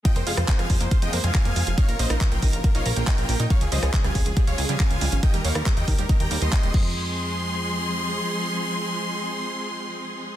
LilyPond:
<<
  \new Staff \with { instrumentName = "Supersaw synth" } { \time 4/4 \key f \minor \tempo 4 = 139 <ees'' g''>16 c''16 <aes' f''>16 c''16 c''16 <f'' aes''>16 c''16 c''16 c''16 <ees'' g''>16 c''16 <f'' aes''>4 r16 | <des'' f''>16 bes'16 <c'' ees''>16 bes'16 bes'16 <bes' g''>16 bes'16 bes'16 bes'16 <des'' f''>16 bes'16 <bes' g''>4 r16 | <des'' f''>16 aes'16 <c'' ees''>16 aes'16 aes'16 <f'' aes''>16 aes'16 aes'16 aes'16 <des'' f''>16 aes'16 <f'' aes''>4 r16 | <ees'' g''>16 bes'16 <des'' f''>16 bes'16 bes'16 <ees'' g''>16 bes'16 bes'16 bes'16 <g'' bes''>16 bes'16 <ees'' c'''>8. c'''8~ |
c'''1~ | c'''1 | }
  \new Staff \with { instrumentName = "Synth pluck" } { \time 4/4 \key f \minor f16 bes16 f'16 f16 bes16 f'16 f16 bes16 f'16 f16 bes16 f'16 f16 bes16 f'16 f16 | ees'16 bes'16 bes16 ees'16 bes'16 bes16 ees'16 bes'16 bes16 ees'16 bes'16 bes16 ees'16 bes'16 bes16 ees'16 | des'16 des16 g16 des'16 des16 g16 des'16 des16 g16 des'16 des16 g16 des'16 des16 g16 des'16 | ees16 g16 ees'16 ees16 g16 ees'16 ees16 g16 ees'16 ees16 g16 ees'16 ees16 g16 f8~ |
f8 r2. r8 | r1 | }
  \new Staff \with { instrumentName = "String section" } { \clef bass \time 4/4 \key f \minor <c f aes f'>8 <c f aes f'>8 <c f aes f'>16 <c f aes f'>16 <c f aes f'>8 <c f aes f'>16 <c f aes f'>8 <c f aes f'>8 <c f aes f'>8 r16 | <des f bes f'>8 <des f bes f'>8 <des f bes f'>16 <des f bes f'>16 <des f bes f'>8 <des f bes f'>16 <des f bes f'>8 <des f bes f'>8 <des f bes f'>8 r16 | <des f aes f'>8 <des f aes f'>8 <des f aes f'>16 <des f aes f'>16 <des f aes f'>8 <des f aes f'>16 <des f aes f'>8 <des f aes f'>8 <des f aes f'>8 r16 | <ees g bes g'>8 <ees g bes g'>8 <ees g bes g'>16 <ees g bes g'>16 <ees g bes g'>8 <ees g bes g'>16 <ees g bes g'>8 <ees g bes g'>8 <ees g bes g'>16 <f aes c' aes'>8~ |
<f aes c' aes'>1~ | <f aes c' aes'>1 | }
  \new Staff \with { instrumentName = "Analog synth bass" } { \clef bass \time 4/4 \key f \minor r16 f,16 f,16 f,16 r16 f,16 f,16 f,16 r16 f,16 f,16 f,16 r16 f,16 f,16 f,,16 | r16 bes,,16 bes,,16 bes,,16 r16 bes,,16 bes,,16 bes,,16 r16 bes,,16 bes,,16 bes,,16 r16 bes,,16 bes,,16 bes,16 | r16 des,16 des,16 des,16 r16 des,16 des,16 des,16 r16 des,16 des,16 des,16 r16 des,16 des,16 aes,,16 | r16 ees,16 ees,16 ees,16 r16 ees,16 ees,16 ees,16 r16 ees,16 ees,16 ees,16 r16 ees,,16 f,8~ |
f,2. r4 | r1 | }
  \new DrumStaff \with { instrumentName = "Drums" } \drummode { \time 4/4 <hh bd>16 hh16 hho16 <hh ss>16 <hc hh bd>16 <hh ss>16 <hho bd>16 hh16 <hh bd>16 hh16 hho16 hh16 <hc hh bd>16 hh16 hho16 hh16 | <hh bd>16 hh16 hho16 <hh ss>16 <hc hh bd>16 hh16 <hho bd>16 hh16 <hh bd>16 hh16 hho16 hh16 <hc hh bd>16 hh16 hho16 hh16 | <hh bd>16 hh16 hho16 <hh ss>16 <hc hh bd>16 <hh ss>16 <hho bd>16 hh16 <hh bd>16 hh16 hho16 hh16 <hc hh bd>16 hh16 hho16 hh16 | <hh bd>16 hh16 hho16 <hh ss>16 <hc hh bd>16 hh16 <hho bd>16 hh16 <hh bd>16 hh16 hho16 hh16 <hc hh bd>16 hh16 <cymc bd>8 |
r4 r4 r4 r4 | r4 r4 r4 r4 | }
>>